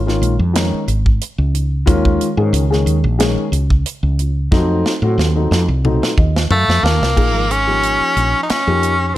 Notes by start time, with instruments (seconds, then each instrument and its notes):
Already playing: fretless electric bass G#1
0.06 grand piano D#3 G#3 C#4 F4, snare
0.22 fretless electric bass A#1, closed hi-hat
0.39 fretless electric bass F2, grand piano C#4 F4
0.53 grand piano D#3 G#3 C#4 D#4, snare, closed hi-hat
0.73 muted fretless electric bass stroke
0.87 fretless electric bass G#1, grand piano C#4 D#4, closed hi-hat
1.06 kick
1.21 closed hi-hat
1.38 fretless electric bass C#2
1.53 grand piano C#4 D#4, closed hi-hat
1.86 fretless electric bass D#2, grand piano D#3 G#3 C#4 F4, kick, closed hi-hat
2.05 kick
2.21 closed hi-hat
2.37 fretless electric bass G#2, grand piano D#3 G#3 C#4 G#4
2.53 fretless electric bass C#2, closed hi-hat
2.70 grand piano D#3 G#3 C#4 G#4, snare
2.86 fretless electric bass D#2, closed hi-hat
3.04 fretless electric bass A#1, grand piano C#4 F#4
3.18 grand piano D#3 G#3 C#4 G#4, snare, closed hi-hat
3.37 muted fretless electric bass stroke
3.52 fretless electric bass C#2, grand piano C#4 F#4, closed hi-hat
3.70 kick
3.86 closed hi-hat
4.03 fretless electric bass C#2
4.19 grand piano C#4 F4, closed hi-hat
4.51 fretless electric bass F2, grand piano F#3 A3 C4 D#4, kick, snare
4.86 snare
5.02 fretless electric bass A2, grand piano F#3 A3 C4 F#4
5.18 fretless electric bass D#2, snare
5.35 grand piano F#3 A3 C4 D#4
5.51 fretless electric bass F2, snare
5.68 fretless electric bass C2, grand piano C4
5.84 grand piano F#3 A3 C4 D#4, mid tom
6.02 muted fretless electric bass stroke, snare
6.18 fretless electric bass D#2, grand piano C4 F4 D#5, kick
6.36 snare
6.50 fretless electric bass F#2, tenor saxophone A3, grand piano F5, floor tom
6.68 fretless electric bass F2, snare
6.83 fretless electric bass D#2, tenor saxophone A#3, grand piano C4 D#4 A5, snare
7.01 fretless electric bass C2, snare
7.16 fretless electric bass A#1, grand piano F3 A#3 D#4 G#4, kick, crash
7.34 fretless electric bass G#1
7.50 tenor saxophone C#4, grand piano D#4 G#4, closed hi-hat
7.67 grand piano F3 A#3 D#4 G4
7.83 closed hi-hat
8.01 muted fretless electric bass stroke
8.16 fretless electric bass A#1, closed hi-hat
8.43 tenor saxophone D#4
8.50 tenor saxophone C#4, muted fretless electric bass stroke, snare, closed hi-hat
8.67 fretless electric bass F2, grand piano F3 A#3 D#4 G4
8.83 closed hi-hat
9.00 grand piano D#4 G4
9.08 tenor saxophone C#4
9.14 tenor saxophone C4